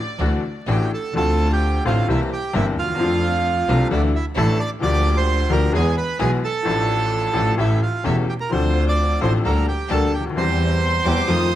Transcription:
Already playing: D5
0.19 D2 D3 E3 A3 D4 E4 F#4
0.66 A1 A2 E3 A3 D4 E4 F#4 G4
0.71 G5
0.93 A4 A5
1.14 D2 D3 A3 C4 D4 F4 A4 A5
1.52 G4 G5
1.84 A1 A2 D3 A3 C4 D4 F4 F5
2.08 C2 C3 E3 A#3 C4 E4 G4 E5
2.32 G4 G5
2.53 G1 G2 E3 A#3 C4 E4 G4 E5
2.76 D#2 F4 F5
2.82 D2
2.88 D#2
2.94 E2 F3
2.99 F2 F3 A3 C4 D4 F4 A4
3.68 C2 C3 F3 A3 C4 D4 F4 A4
3.90 D2 D3 E3 A3 D4 E4 A4 D5
4.16 E4 E5
4.35 A1 A2 E3 A3 D4 E4 A4 A5
4.60 D5 D6
4.80 D2 D3 F3 A#3 D4 G4 D5 D6
5.17 C5 C6
5.49 D2 D3 F3 A#3 D4 G4 A#4 A#5
5.72 E2 E3 G#3 B3 E4 G#4 G#5
5.97 B4 B5
6.18 B1 B2 E3 G#3 B3 E4 G#4 G#5
6.44 A4 A5
6.63 A1 A2 F3 A3 D4 F4 A4
6.67 A4
7.33 A1 A2 F3 A3 D4 F4 A4
7.57 A1 A2 E3 A3 C#4 E4 G4 A4 E5
7.83 F4 F5
8.04 E1 E2 E3 A3 C#4 E4 G4 A4 E5
8.29 G4 G5
8.40 A#4 A#5
8.50 D2 D3 F3 C4 D4 F4 A4 C5 C6
8.88 D5 D6
9.21 A1 A2 F3 C4 D4 F4 A4 C5 C6
9.44 D2 D3 G3 A#3 D4 G4 A4 A#4 A#5
9.68 G4 G5
9.89 D2 D3 G3 A#3 D4 G4 A4 A5
10.13 D2 G4 G5
10.20 C#2
10.25 D2
10.30 D#2
10.35 E2 E3 G3 C4 E4 G4 C5 C6
10.39 G4
10.82 C6
11.03 E2 E3 G3 C4 E4 G4 D6
11.27 F2 D#3 F3 A3 C4 D#4 F4 D#6

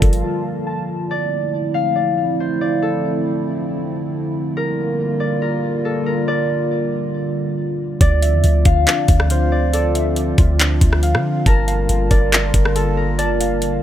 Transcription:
Already playing: D3 F3 G3 A#3 F4 A#4 D5 F5 A5
0.02 G1 A4, kick, closed hi-hat
0.13 closed hi-hat
0.24 F4
0.67 A5
1.10 D3 F3 A3 C4 E4 D5
1.74 F5
1.96 D5
2.40 C5
2.61 D5
2.82 A4
4.55 G3 A#3 F4 A#4
5.20 D5
5.42 A#4
5.85 A4
6.06 A#4
6.28 D5
8.01 D2 F3 C4 F4 D5, kick, closed hi-hat
8.22 E5, closed hi-hat
8.33 E2
8.44 D2, closed hi-hat
8.65 D2 F4 F5, kick, closed hi-hat
8.87 D4 D5, clap, closed hi-hat
9.08 D2, kick, closed hi-hat
9.20 cross-stick
9.30 C5 F5, closed hi-hat
9.52 D5
9.73 A4 D5, closed hi-hat
9.95 E5, closed hi-hat
10.16 closed hi-hat
10.38 D2 F4, kick, closed hi-hat
10.59 D4, clap, closed hi-hat
10.81 D2, kick, closed hi-hat
10.93 cross-stick
11.03 F5, closed hi-hat
11.14 D3, cross-stick
11.46 G1 D3 G3 A#3 F4 A#4 A5, kick, closed hi-hat
11.67 F5, closed hi-hat
11.89 G1, closed hi-hat
12.11 G1 A#4 D5, kick, closed hi-hat
12.32 F4 A#4, clap, closed hi-hat
12.54 G1, kick, closed hi-hat
12.65 cross-stick
12.75 A4 A5, closed hi-hat
12.97 A#4
13.18 D5 A5, closed hi-hat
13.40 F5, closed hi-hat
13.62 closed hi-hat

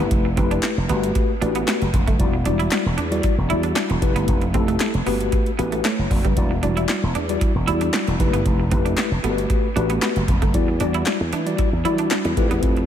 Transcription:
Already playing: A3 E4 G4 B4
0.11 F1, kick, closed hi-hat
0.25 muted clean electric guitar stroke
0.36 F1 A3 C4 E4 G4 B4, kick, closed hi-hat
0.51 D4, closed hi-hat
0.63 snare, clap, closed hi-hat
0.77 F1
0.89 G1 A3 B3 F#4 G4 B4, closed hi-hat
1.04 closed hi-hat
1.15 muted clean electric guitar stroke, kick, closed hi-hat
1.41 A1 A3 D4 F#4 G4 B4, closed hi-hat
1.55 B3, closed hi-hat
1.68 B3, snare, clap, closed hi-hat
1.81 F#1, closed hi-hat
1.93 E1, muted clean electric guitar stroke, kick, closed hi-hat
2.07 F#1 A3, kick, closed hi-hat
2.19 E1 G3 E4 F#4 D5, kick, closed hi-hat
2.33 muted clean electric guitar stroke
2.45 E1 G3 D4 E4 F#4 D5, closed hi-hat
2.59 E4, closed hi-hat
2.71 snare, clap, closed hi-hat
2.86 E1
2.98 E2 D4, closed hi-hat
3.11 G3 E4 F#4 D5, closed hi-hat
3.23 muted clean electric guitar stroke, kick, closed hi-hat
3.38 E1
3.50 E2 G3 E4 F#4 D5, closed hi-hat
3.63 D4, closed hi-hat
3.76 D4, snare, clap, closed hi-hat
3.90 E1, muted clean electric guitar stroke, closed hi-hat
4.01 F1 A3 E4 G4 B4, kick, closed hi-hat
4.16 G1 B3, closed hi-hat
4.28 F1, kick, closed hi-hat
4.42 muted clean electric guitar stroke, closed hi-hat
4.54 F1 A3 C4 E4 G4 A4, kick, closed hi-hat
4.68 A3, closed hi-hat
4.80 snare, clap, closed hi-hat
4.94 F1, closed hi-hat
5.06 G1 A3 B3 F#4 G4 B4, open hi-hat
5.21 closed hi-hat
5.32 muted clean electric guitar stroke, kick, closed hi-hat
5.46 closed hi-hat
5.58 A1 A3 B3 F#4 G4 B4, closed hi-hat
5.72 A3, closed hi-hat
5.85 A3 E4 C#5, snare, clap, closed hi-hat
5.99 F#1
6.11 E1 F#4 D5, muted clean electric guitar stroke, kick, open hi-hat
6.25 F#1 G3 D4 B4, kick, closed hi-hat
6.37 E1 G3 E4 F#4 D5, kick, closed hi-hat
6.51 muted clean electric guitar stroke
6.63 E1 G3 D4 E4 F#4 D5, closed hi-hat
6.77 E4, closed hi-hat
6.89 snare, clap, closed hi-hat
7.03 E1
7.15 E2 D4, closed hi-hat
7.29 G3 E4 F#4 D5, closed hi-hat
7.41 muted clean electric guitar stroke, kick, closed hi-hat
7.55 E1
7.67 E2 G3 E4 F#4 D5, closed hi-hat
7.81 D4, closed hi-hat
7.93 D4, snare, clap, closed hi-hat
8.07 E1, muted clean electric guitar stroke, closed hi-hat
8.19 F1 A3 E4 G4 B4, kick, closed hi-hat
8.33 G1 B3, closed hi-hat
8.46 F1, kick, closed hi-hat
8.60 muted clean electric guitar stroke
8.71 F1 A3 C4 E4 G4 B4, kick, closed hi-hat
8.85 D4, closed hi-hat
8.97 snare, clap, closed hi-hat
9.11 F1
9.23 G1 A3 B3 F#4 G4 A4, closed hi-hat
9.30 B4
9.38 closed hi-hat
9.50 muted clean electric guitar stroke, kick, closed hi-hat
9.76 A1 A3 D4 F#4 G4 B4, closed hi-hat
9.90 B3, closed hi-hat
10.02 B3, snare, clap, closed hi-hat
10.16 F#1, closed hi-hat
10.28 E1, muted clean electric guitar stroke, kick, closed hi-hat
10.42 F#1 A3, kick, closed hi-hat
10.54 E2 G3 E4 F#4 D5, kick, closed hi-hat
10.68 muted clean electric guitar stroke
10.80 E2 G3 D4 E4 F#4 D5, closed hi-hat
10.94 E4, closed hi-hat
11.06 snare, clap, closed hi-hat
11.07 clap
11.20 E2
11.33 E3 D4, closed hi-hat
11.46 G3 E4 F#4 D5, closed hi-hat
11.58 muted clean electric guitar stroke, kick, closed hi-hat
11.73 E2
11.84 E3 F#3 E4 F#4 D5, closed hi-hat
11.91 G3
11.98 D4, closed hi-hat
12.11 D4, snare, clap, closed hi-hat
12.25 E2, muted clean electric guitar stroke, closed hi-hat
12.37 F2 A3 E4 G4 B4, kick, closed hi-hat
12.51 E2 B3, closed hi-hat
12.63 F2, kick, closed hi-hat
12.77 muted clean electric guitar stroke, closed hi-hat

